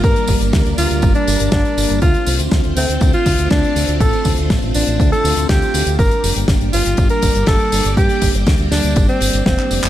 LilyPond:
<<
  \new Staff \with { instrumentName = "Alto saxophone" } { \time 4/4 \key g \minor \tempo 4 = 121 bes'8. r8. f'8. d'8. d'4 | f'8. r8. c'8. f'8. d'4 | a'8. r8. d'8. a'8. g'4 | bes'8. r8. f'8. bes'8. a'4 |
g'8. r8. d'8. c'8. c'4 | }
  \new Staff \with { instrumentName = "String machine" } { \time 4/4 \key g \minor << { <g bes bes' d''>1 | <a c' f' c''>1~ | <a c' f' c''>1 | <g bes g' d''>1~ |
<g bes g' d''>1 | } \\ { d'1~ | d'1~ | d'1~ | d'1~ |
d'1 | } >> }
  \new Staff \with { instrumentName = "Fingered electric bass" } { \clef bass \time 4/4 \key g \minor g,16 r16 g,,16 g,,16 d,16 d,16 d,16 d,16 g,,16 r16 g,,16 g,,16 g,,16 r16 g,,16 g,,16 | d,16 r16 c,16 d,16 d,16 d,16 d,16 d,16 d,16 r16 d,16 d,16 d,16 r16 d,16 d,16 | a,,16 r16 d,16 d,16 a,,16 a,,16 a,,16 a,,16 d,16 r16 d,16 d,16 d,16 r16 d,16 d,16 | g,,16 r16 f,,16 g,,16 g,,16 g,,16 g,,16 g,,16 g,,16 r16 g,,16 g,,16 g,,16 r16 g,,16 g,,16 |
g,16 r16 g,,16 g,,16 d,16 d,16 d,16 d,16 g,,16 r16 g,,16 g,,16 f,,16 r16 f,,16 f,,16 | }
  \new DrumStaff \with { instrumentName = "Drums" } \drummode { \time 4/4 <hh bd tamb>16 <hh tamb>16 <hho bd tamb>16 <hh tamb>16 <hh bd sn tamb>16 <hh tamb>16 <hho tamb>16 <hh tamb>16 <hh bd tamb>16 <hh tamb>16 <hho tamb>16 <hh tamb>16 <hh bd sn tamb>16 <hh tamb>16 <hho tamb>16 <hh tamb>16 | <hh bd tamb>16 <hh tamb>16 <hho tamb>16 <hh tamb>16 <hh bd sn tamb>16 <hh tamb>16 <hho tamb>16 <hh tamb>16 <hh bd tamb>16 <hh tamb>16 <hho bd tamb>16 <hh tamb>16 <hh bd sn tamb>16 <hh tamb>16 <hho tamb>16 <hh tamb>16 | <hh bd tamb>16 <hh tamb>16 <hho bd tamb>16 <hh tamb>16 <hh bd sn tamb>16 <hh tamb>16 <hho tamb>16 <hh tamb>16 <hh bd tamb>16 <hh tamb>16 <hho tamb>16 <hh tamb>16 <hh bd sn tamb>16 <hh tamb>16 <hho tamb>16 <hh tamb>16 | <hh bd tamb>16 <hh tamb>16 <hho tamb>16 <hh tamb>16 <hh bd sn tamb>16 <hh tamb>16 <hho tamb>16 <hh tamb>16 <hh bd tamb>16 <hh tamb>16 <hho bd tamb>16 <hh tamb>16 <hh bd sn tamb>16 <hh tamb>16 <hho tamb>16 <hh tamb>16 |
<hh bd tamb>16 <hh tamb>16 <hho bd tamb>16 <hh tamb>16 <hh bd sn tamb>16 <hh tamb>16 <hho sn tamb>16 <hh tamb>16 <hh bd tamb>16 <hh tamb>16 <hho tamb>16 <hh tamb>16 <hh bd sn tamb>16 <hc hh tamb>16 <hho tamb>16 <hc hh tamb>16 | }
>>